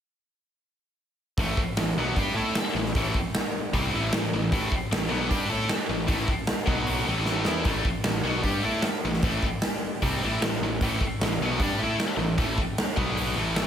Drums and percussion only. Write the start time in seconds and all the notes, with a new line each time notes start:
1.37 kick, open hi-hat
1.57 kick
1.77 snare, open hi-hat
2.16 kick, open hi-hat
2.55 snare, open hi-hat
2.66 snare
2.85 snare
2.95 kick, open hi-hat
3.14 kick
3.34 snare, open hi-hat
3.73 kick, open hi-hat
4.12 snare, open hi-hat
4.52 kick, open hi-hat
4.72 kick
4.92 snare, open hi-hat
5.31 kick, open hi-hat
5.69 snare, open hi-hat
5.80 snare
6.08 kick, open hi-hat
6.28 kick
6.47 snare, open hi-hat
6.67 kick
6.87 open hi-hat
7.25 snare
7.45 snare
7.64 kick, open hi-hat
7.85 kick
8.04 snare, open hi-hat
8.43 kick, open hi-hat
8.82 snare, open hi-hat
9.13 snare
9.22 kick, open hi-hat
9.43 kick
9.61 snare, open hi-hat
10.02 kick, open hi-hat
10.42 snare, open hi-hat
10.53 snare
10.81 kick, open hi-hat
11.01 kick
11.21 snare, open hi-hat
11.60 kick, open hi-hat
11.99 snare, open hi-hat
12.38 kick, open hi-hat
12.58 kick
12.78 snare, open hi-hat
12.97 kick
13.17 open hi-hat
13.56 snare, open hi-hat